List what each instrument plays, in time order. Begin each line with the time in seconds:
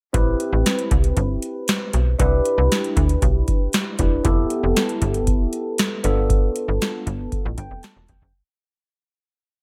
0.13 fm bass A1, tine electric piano C4 E4 G4 B4, kick, closed hi-hat
0.40 closed hi-hat
0.52 fm bass A1
0.66 snare, closed hi-hat
0.79 closed hi-hat
0.91 fm bass C2, kick, closed hi-hat
1.04 closed hi-hat
1.17 fm bass G1, kick, closed hi-hat
1.42 closed hi-hat
1.68 snare, closed hi-hat
1.93 fm bass B1, closed hi-hat
2.19 fm bass C2, tine electric piano D4 E4 G4 B4, kick, closed hi-hat
2.45 closed hi-hat
2.58 fm bass C2
2.72 snare, closed hi-hat
2.84 closed hi-hat
2.97 fm bass D2, kick, closed hi-hat
3.09 closed hi-hat
3.22 fm bass B1, kick, closed hi-hat
3.48 kick, closed hi-hat
3.73 snare, closed hi-hat
3.99 fm bass E1, tine electric piano D4 E4 G4 B4, kick, closed hi-hat
4.24 fm bass F1, tine electric piano B3 E4 G4 A4, kick, closed hi-hat
4.50 closed hi-hat
4.63 fm bass F1
4.76 snare, closed hi-hat
4.89 closed hi-hat
5.02 fm bass G1, kick, closed hi-hat
5.14 closed hi-hat
5.27 fm bass E1, kick, closed hi-hat
5.53 closed hi-hat
5.78 snare, closed hi-hat
6.03 fm bass G1, tine electric piano B3 D4 F4 A4, closed hi-hat
6.30 kick, closed hi-hat
6.56 closed hi-hat
6.68 fm bass G1
6.82 snare, closed hi-hat
7.07 fm bass G1, kick, closed hi-hat
7.32 kick, closed hi-hat
7.45 fm bass A1
7.58 fm bass G1, tine electric piano G5, kick, closed hi-hat
7.71 fm bass F1
7.83 tine electric piano A5, snare, closed hi-hat
7.96 fm bass E1
8.08 fm bass F1, tine electric piano G5, kick, closed hi-hat
8.22 fm bass F#1, kick